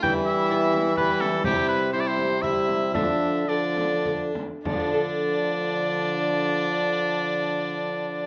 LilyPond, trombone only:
\new Staff \with { instrumentName = "Trombone" } { \clef bass \time 3/4 \key d \dorian \tempo 4 = 106 g2 g4 | g4 g4 g4 | f4 f4. r8 | f2.~ |
f2. | }